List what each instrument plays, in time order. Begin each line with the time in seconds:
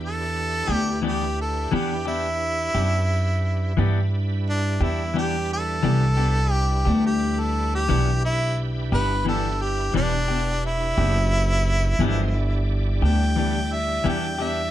Already playing: upright bass E2, tonewheel organ D4 E4 G4 B4
0.04 harmonica A4
0.68 upright bass D2, clean electric guitar B3 D4 G4
0.74 harmonica G4
1.02 clean electric guitar E3 B3 D4 G4
1.07 harmonica G4
1.41 harmonica A4
1.72 upright bass E2, clean electric guitar E3 B3 D4 G4, harmonica G4
2.06 clean electric guitar B3 D4 G4, harmonica E4
2.75 upright bass F#2, clean electric guitar B3 D4 G4
3.77 upright bass G2, clean electric guitar E3 B3 D4 G4, tonewheel organ G3 D4 E4 B4
4.50 harmonica D4
4.80 upright bass E2, clean electric guitar B3 D4 G4, harmonica E4
5.14 clean electric guitar E3 B3 D4 G4
5.18 harmonica G4
5.53 harmonica A4
5.83 upright bass C2, clean electric guitar E3 B3 D4 G4
6.17 clean electric guitar B3 D4 G4
6.52 harmonica G4
6.85 upright bass D2, clean electric guitar B3 D4 G4
7.06 harmonica G4
7.40 harmonica A4
7.75 harmonica G4
7.88 upright bass B1, clean electric guitar E3 B3 D4 G4, tonewheel organ D4 E4 G4 B4
8.25 harmonica E4
8.92 upright bass G1, clean electric guitar B3 D4 G4, harmonica B4
9.25 clean electric guitar E3 B3 D4 G4, harmonica A4
9.62 harmonica G4
9.94 upright bass E1, clean electric guitar E3 B3 D4 G4, harmonica D4
10.28 clean electric guitar B3 D4 G4
10.66 harmonica E4
10.98 upright bass F#1, clean electric guitar B3 D4 G4
11.99 upright bass G1, clean electric guitar E3 B3 D4 G4, tonewheel organ F3 G#3 C5 D#5
12.34 tonewheel organ G3 D4 E4 D5
13.02 upright bass D2, clean electric guitar B3 D4 G4, harmonica G5
13.36 clean electric guitar E3 B3 D4 G4
13.74 harmonica E5
14.04 upright bass E2, clean electric guitar E3 B3 D4 G4
14.08 harmonica G5
14.39 clean electric guitar B3 D4 G4
14.43 harmonica E5